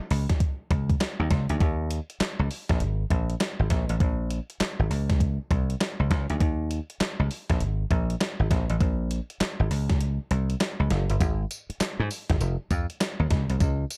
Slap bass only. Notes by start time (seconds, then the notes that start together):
0.11 C#2
0.71 C#2
1.19 D#2
1.31 C#2
1.50 D2
1.61 D#2
2.20 muted slap bass stroke
2.39 C#2
2.70 A#1
2.80 G#1
3.10 A#1
3.59 G#1
3.70 A#1
3.89 A1
4.00 A#1
4.61 muted slap bass stroke
4.79 G#1
4.90 C#2
5.51 C2
6.00 C#2
6.11 C#2
6.30 D2
6.41 D#2
7.00 muted slap bass stroke
7.19 C#2
7.50 A#1
7.60 G#1
7.91 A#1
8.40 G#1
8.51 A#1
8.70 A1
8.81 A#1
9.41 muted slap bass stroke
9.60 G#1
9.71 C#2
10.31 C2
10.80 C#2
10.91 F#1
11.10 G1
11.21 G#1
11.70 muted slap bass stroke
11.80 muted slap bass stroke
12.00 G#2
12.30 G#1
12.41 F1
12.71 F2
13.20 D#2
13.31 C#2
13.50 C2
13.60 C#2